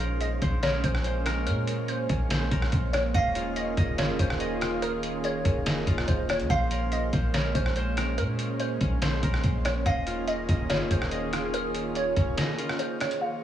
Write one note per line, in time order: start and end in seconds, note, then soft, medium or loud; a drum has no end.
0.00 0.39 A#1 loud
0.00 3.11 G#3 medium
0.00 9.82 A#3 medium
0.00 6.46 C#4 medium
0.00 1.68 F4 medium
0.00 0.62 A#4 medium
0.00 0.42 C5 loud
0.00 0.73 D#5 medium
0.00 0.18 F5 loud
0.21 0.60 D#5 medium
0.21 closed hi-hat medium
0.42 0.82 A#1 loud
0.42 1.05 C5 medium
0.42 kick loud
0.42 closed hi-hat medium
0.63 1.25 A#4 loud
0.63 0.83 C#5 medium
0.63 snare loud
0.63 closed hi-hat medium
0.84 1.48 A#1 loud
0.84 2.09 C#4 medium
0.84 1.43 C5 medium
0.84 kick medium
0.84 closed hi-hat medium
0.95 cross-stick loud
1.04 2.30 C5 medium
1.04 closed hi-hat medium
1.26 2.51 A#4 medium
1.26 cross-stick loud
1.26 closed hi-hat medium
1.47 2.06 A#2 loud
1.47 1.86 A#4 loud
1.47 closed hi-hat medium
1.67 closed hi-hat medium
1.88 2.89 C5 medium
1.88 closed hi-hat medium
2.09 2.50 A#1 loud
2.09 4.19 C#4 medium
2.09 kick loud
2.09 closed hi-hat medium
2.30 4.25 C5 loud
2.30 snare loud
2.30 closed hi-hat medium
2.51 2.72 A#1 loud
2.51 4.64 A#4 medium
2.51 kick loud
2.51 closed hi-hat medium
2.62 cross-stick loud
2.72 3.13 A#1 loud
2.72 kick medium
2.72 closed hi-hat medium
2.93 3.13 C#5 medium
2.93 cross-stick loud
2.93 closed hi-hat medium
3.14 3.75 D#1 loud
3.14 6.47 D#3 medium
3.14 6.47 F4 medium
3.14 6.47 G#4 medium
3.14 3.77 D#5 loud
3.14 3.54 F5 loud
3.14 kick loud
3.14 closed hi-hat medium
3.35 3.98 F4 medium
3.35 closed hi-hat medium
3.56 3.96 D#5 medium
3.56 closed hi-hat medium
3.77 4.00 D#1 loud
3.77 4.40 D#5 medium
3.77 kick loud
3.77 closed hi-hat medium
3.98 4.10 G1 loud
3.98 4.61 F4 medium
3.98 4.18 C#5 medium
3.98 snare loud
3.98 closed hi-hat medium
4.09 4.19 D#1 loud
4.19 5.41 D#1 loud
4.19 5.45 C#4 medium
4.19 4.79 C5 medium
4.19 kick loud
4.19 closed hi-hat medium
4.30 cross-stick loud
4.40 5.66 D#5 medium
4.40 closed hi-hat medium
4.61 5.87 F4 medium
4.61 cross-stick loud
4.61 closed hi-hat medium
4.82 5.22 A#4 loud
4.82 closed hi-hat medium
5.03 closed hi-hat medium
5.24 5.64 C#5 medium
5.24 closed hi-hat medium
5.45 5.86 D#1 loud
5.45 6.56 C#4 medium
5.45 kick loud
5.45 closed hi-hat medium
5.66 7.45 D#5 medium
5.66 snare loud
5.66 closed hi-hat medium
5.87 6.07 D#1 loud
5.87 8.40 F4 medium
5.87 kick loud
5.87 closed hi-hat medium
5.98 cross-stick loud
6.08 6.41 D#1 loud
6.08 6.28 C5 medium
6.08 kick medium
6.08 closed hi-hat medium
6.29 6.50 C#5 medium
6.29 cross-stick loud
6.29 closed hi-hat medium
6.40 6.49 D#2 loud
6.40 closed hi-hat medium
6.50 7.11 A#1 loud
6.50 9.82 G#3 medium
6.50 9.82 C#4 medium
6.50 7.13 C5 loud
6.50 6.89 F5 loud
6.50 kick loud
6.50 closed hi-hat medium
6.71 7.33 A#4 medium
6.71 closed hi-hat medium
6.92 7.32 D#5 medium
6.92 closed hi-hat medium
7.13 7.53 A#1 loud
7.13 7.76 C5 medium
7.13 kick loud
7.13 closed hi-hat medium
7.34 7.96 A#4 loud
7.34 7.54 C#5 medium
7.34 snare loud
7.34 closed hi-hat medium
7.55 8.19 A#1 loud
7.55 8.80 C#4 medium
7.55 8.14 C5 medium
7.55 kick loud
7.55 closed hi-hat medium
7.66 cross-stick loud
7.76 9.02 C5 medium
7.76 closed hi-hat medium
7.97 9.23 A#4 loud
7.97 cross-stick loud
7.97 closed hi-hat medium
8.18 8.78 A#2 loud
8.18 8.57 A#4 loud
8.18 closed hi-hat medium
8.39 closed hi-hat medium
8.60 9.61 C5 medium
8.60 closed hi-hat medium
8.81 9.21 A#1 loud
8.81 10.90 C#4 medium
8.81 kick loud
8.81 closed hi-hat medium
9.02 10.97 C5 loud
9.02 snare loud
9.02 closed hi-hat medium
9.23 9.43 A#1 loud
9.23 11.35 A#4 medium
9.23 kick loud
9.23 closed hi-hat medium
9.34 cross-stick loud
9.44 9.84 A#1 loud
9.44 kick medium
9.44 closed hi-hat medium
9.65 9.85 C#5 medium
9.65 cross-stick loud
9.65 closed hi-hat medium
9.86 10.46 D#1 loud
9.86 13.18 D#3 medium
9.86 13.18 A#3 medium
9.86 13.18 C#4 medium
9.86 13.18 F4 medium
9.86 13.18 G#4 medium
9.86 10.48 D#5 loud
9.86 10.25 F5 loud
9.86 kick loud
9.86 closed hi-hat medium
10.07 10.69 F4 medium
10.07 closed hi-hat medium
10.28 10.67 D#5 medium
10.28 closed hi-hat medium
10.49 10.71 D#1 loud
10.49 11.11 D#5 medium
10.49 kick loud
10.49 closed hi-hat medium
10.69 10.82 G1 loud
10.69 11.32 F4 medium
10.69 10.90 C#5 medium
10.69 snare loud
10.69 closed hi-hat medium
10.80 10.90 D#1 medium
10.91 12.13 D#1 loud
10.91 12.16 C#4 medium
10.91 11.50 C5 medium
10.91 kick loud
10.91 closed hi-hat medium
11.02 cross-stick loud
11.11 12.37 D#5 medium
11.11 closed hi-hat medium
11.33 12.58 F4 medium
11.33 cross-stick loud
11.33 closed hi-hat medium
11.54 11.93 A#4 loud
11.54 closed hi-hat medium
11.75 closed hi-hat medium
11.95 12.35 C#5 medium
11.95 closed hi-hat medium
12.16 12.37 D#1 loud
12.16 13.27 C#4 medium
12.16 kick loud
12.16 closed hi-hat medium
12.38 13.44 D#5 medium
12.38 snare loud
12.38 closed hi-hat medium
12.58 13.44 F4 medium
12.58 closed hi-hat medium
12.69 cross-stick loud
12.79 12.99 C5 medium
12.79 closed hi-hat medium
13.00 13.21 C#5 medium
13.00 cross-stick loud
13.00 closed hi-hat medium
13.11 closed hi-hat medium
13.21 13.44 A#2 medium
13.21 13.44 F3 medium
13.21 13.44 C#4 medium
13.21 13.44 G#4 medium
13.21 13.44 C5 loud
13.21 13.44 C5 medium
13.21 13.44 F5 loud